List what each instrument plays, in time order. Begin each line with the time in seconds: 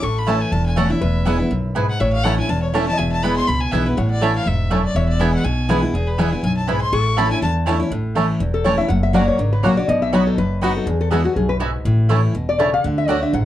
0.02 upright bass A1, steel-string acoustic guitar A2, resonator guitar played with a steel bar A4, fiddle C#6
0.18 fiddle B5
0.27 steel-string acoustic guitar E3 A3 C#4 E4, mandolin A3 E4 C#5 A5, five-string banjo A3 C#4 E4, fiddle A5
0.42 fiddle G#5
0.52 upright bass E1, steel-string acoustic guitar E2, fiddle A5
0.66 fiddle G#5
0.76 steel-string acoustic guitar E3 A3 C#4 E4, mandolin A3 E4 C#5 A5, five-string banjo A3 C#4 E4, fiddle F#5
0.90 steel-string acoustic guitar C#4 E4, fiddle E5
1.01 upright bass E1, steel-string acoustic guitar E2, resonator guitar played with a steel bar B4
1.25 steel-string acoustic guitar E3 G#3 B3 E4, mandolin B3 E4 B4 G#5, five-string banjo B3 E4
1.39 steel-string acoustic guitar B3 E4
1.51 upright bass B1, steel-string acoustic guitar F#2
1.75 steel-string acoustic guitar G#2, mandolin B3 E4 B4 G#5, five-string banjo B3 E4
1.90 fiddle F#5
2.00 upright bass A1, steel-string acoustic guitar A2, resonator guitar played with a steel bar C#5, fiddle E5
2.13 fiddle F5
2.24 steel-string acoustic guitar E3 A3 C#4 E4, mandolin A3 E4 C#5 A5, five-string banjo A3 C#4 E4, fiddle F#5
2.38 steel-string acoustic guitar C#4 E4, fiddle G#5
2.49 upright bass E1, steel-string acoustic guitar E2, fiddle A5
2.63 fiddle C#5
2.74 steel-string acoustic guitar E3 A3 C#4 E4, mandolin A3 E4 C#5 A5, five-string banjo A3 C#4 E4, fiddle E5
2.87 steel-string acoustic guitar C#4 E4, fiddle A5
2.93 resonator guitar played with a steel bar D#5
2.98 upright bass E1, steel-string acoustic guitar E2, resonator guitar played with a steel bar E5, fiddle G#5
3.13 fiddle A5
3.23 steel-string acoustic guitar E3 G#3 B3 E4, mandolin B3 E4 B4 G#5, five-string banjo B3 E4, fiddle B5
3.37 fiddle C6
3.47 upright bass C#2, steel-string acoustic guitar B2, fiddle B5
3.61 fiddle G#5
3.72 upright bass B1, steel-string acoustic guitar E3 G#3 B3 E4, mandolin B3 E4 B4 G#5, five-string banjo B3 E4, fiddle E5
3.86 steel-string acoustic guitar B3 E4, fiddle B4
3.97 upright bass A1, steel-string acoustic guitar A2, fiddle C#5, resonator guitar played with a steel bar F#5
4.11 fiddle D5
4.21 steel-string acoustic guitar E3 A3 C#4 E4, mandolin A3 E4 C#5 A5, five-string banjo A3 C#4 E4, fiddle E5
4.36 fiddle F5
4.46 upright bass E1, steel-string acoustic guitar G#2, fiddle E5
4.70 steel-string acoustic guitar F#2, mandolin A3 E4 C#5 A5, five-string banjo A3 C#4 E4
4.85 fiddle D5
4.95 upright bass E1, steel-string acoustic guitar E2, fiddle C#5, resonator guitar played with a steel bar E5
5.09 fiddle D5
5.19 steel-string acoustic guitar E3 G#3 B3 E4, mandolin B3 E4 B4 G#5, five-string banjo B3 E4, fiddle E5
5.35 fiddle F#5
5.44 upright bass B1, steel-string acoustic guitar B2, fiddle G#5
5.69 steel-string acoustic guitar E3 G#3 B3 E4, mandolin B3 E4 B4 G#5, five-string banjo B3 E4
5.82 steel-string acoustic guitar B3 E4
5.94 upright bass E1, steel-string acoustic guitar E2, fiddle G#4
6.07 fiddle B4
6.18 steel-string acoustic guitar E3 G#3 B3 E4, mandolin B3 E4 B4 G#5, five-string banjo B3 E4, fiddle E5
6.32 steel-string acoustic guitar B3 E4, fiddle G#5
6.43 upright bass B1, steel-string acoustic guitar F#2, fiddle G#5
6.57 fiddle A5
6.67 steel-string acoustic guitar G#2, mandolin B3 E4 B4 G#5, five-string banjo B3 E4, fiddle B5
6.82 fiddle C6
6.92 upright bass A1, steel-string acoustic guitar A2, resonator guitar played with a steel bar A4, fiddle C#6
7.17 steel-string acoustic guitar E3 A3 C#4 E4, mandolin A3 E4 C#5 A5, five-string banjo A3 C#4 E4, fiddle B5
7.31 steel-string acoustic guitar C#4 E4, fiddle G#5
7.42 upright bass E2, steel-string acoustic guitar E2, fiddle A5
7.66 steel-string acoustic guitar E3 A3 C#4 E4, mandolin A3 E4 C#5 A5, five-string banjo A3 C#4 E4
7.80 steel-string acoustic guitar C#4 E4
7.91 upright bass A1, steel-string acoustic guitar A2
8.15 steel-string acoustic guitar E3 A3 C#4 E4, mandolin A3 E4 C#5 A5, five-string banjo A3 C#4 E4
8.40 upright bass E1, steel-string acoustic guitar E2
8.54 resonator guitar played with a steel bar A4
8.64 steel-string acoustic guitar E3 A3 C#4 E4, mandolin A3 E4 C#5 A5, five-string banjo A3 C#4 E4, resonator guitar played with a steel bar C#5
8.78 steel-string acoustic guitar C#4 E4, resonator guitar played with a steel bar E5
8.88 upright bass F#1, steel-string acoustic guitar F#2, resonator guitar played with a steel bar F#5
9.03 resonator guitar played with a steel bar E5
9.13 steel-string acoustic guitar F#3 A#3 C#4 F#4, mandolin A#3 F#4 C#5 F#5, five-string banjo A#3 C#4 F#4, resonator guitar played with a steel bar D5
9.28 resonator guitar played with a steel bar C#5
9.38 upright bass G#1, steel-string acoustic guitar C#3, resonator guitar played with a steel bar A#4
9.53 resonator guitar played with a steel bar B4
9.63 upright bass A#1, steel-string acoustic guitar F#3 A#3 C#4 F#4, mandolin A#3 F#4 C#5 F#5, five-string banjo A#3 C#4 F#4, resonator guitar played with a steel bar C#5
9.77 steel-string acoustic guitar C#4 F#4, resonator guitar played with a steel bar D5
9.88 upright bass B1, steel-string acoustic guitar B2, resonator guitar played with a steel bar D#5
10.02 resonator guitar played with a steel bar E5
10.13 steel-string acoustic guitar F#3 B3 D#4 F#4, mandolin B3 F#4 D#5 B5, five-string banjo B3 D#4 F#4, resonator guitar played with a steel bar C#5
10.27 resonator guitar played with a steel bar A4
10.38 upright bass F#1, steel-string acoustic guitar F#2, resonator guitar played with a steel bar B4
10.61 steel-string acoustic guitar F#3 B3 D#4 F#4, mandolin B3 F#4 D#5 B5, five-string banjo B3 D#4 F#4
10.77 resonator guitar played with a steel bar A4
10.87 upright bass E2, steel-string acoustic guitar E2, resonator guitar played with a steel bar G#4
11.01 resonator guitar played with a steel bar A4
11.11 steel-string acoustic guitar E3 G#3 B3 F#4, mandolin B3 F#4 E5 G#5, five-string banjo B3 E4, resonator guitar played with a steel bar G#4
11.24 steel-string acoustic guitar B3 F#4, resonator guitar played with a steel bar F#4
11.36 upright bass B1, steel-string acoustic guitar F#2, resonator guitar played with a steel bar G#4
11.49 resonator guitar played with a steel bar B4
11.60 steel-string acoustic guitar G#2, mandolin B3 F#4 E5 G#5, five-string banjo B3 E4
11.85 upright bass A1, steel-string acoustic guitar A2
12.09 steel-string acoustic guitar E3 A3 C#4 E4, mandolin A3 E4 C#5 A5, five-string banjo A3 C#4 E4
12.35 upright bass E1, steel-string acoustic guitar B2
12.49 resonator guitar played with a steel bar D5
12.59 steel-string acoustic guitar C#3, mandolin A3 E4 C#5 A5, five-string banjo A3 C#4 E4, resonator guitar played with a steel bar E5
12.74 resonator guitar played with a steel bar F5
12.84 upright bass D2, steel-string acoustic guitar D3, resonator guitar played with a steel bar F#5
12.98 resonator guitar played with a steel bar E5
13.08 steel-string acoustic guitar D3 A3 D4 F#4, mandolin A3 F#4 D5 F#5, five-string banjo A3 D4 F#4, resonator guitar played with a steel bar C#5
13.23 resonator guitar played with a steel bar E5
13.33 upright bass A1, steel-string acoustic guitar G#2, resonator guitar played with a steel bar F#5